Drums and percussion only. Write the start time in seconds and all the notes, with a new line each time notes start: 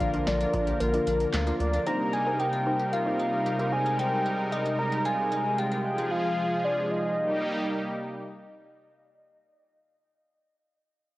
0.01 kick, closed hi-hat
0.14 closed hi-hat
0.27 snare, closed hi-hat
0.41 closed hi-hat
0.54 kick, closed hi-hat
0.67 closed hi-hat
0.80 closed hi-hat
0.94 closed hi-hat
1.07 closed hi-hat
1.20 closed hi-hat
1.33 snare, clap, closed hi-hat
1.47 closed hi-hat
1.60 closed hi-hat
1.74 closed hi-hat